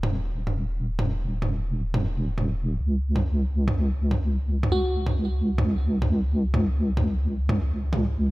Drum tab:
T2 |o----o-----o----|o-----o----o----|----o-----o----o|-----o----o-----|

T2 |o----o-----o----|o-----o----o----|